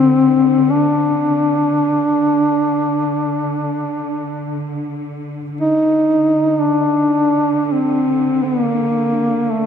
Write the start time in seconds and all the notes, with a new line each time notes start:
Already playing: D3 C4
0.71 D4
5.54 D3
5.61 D#4
6.61 D4
7.66 D4
7.72 C4
8.44 B3
8.63 A#3
9.52 A3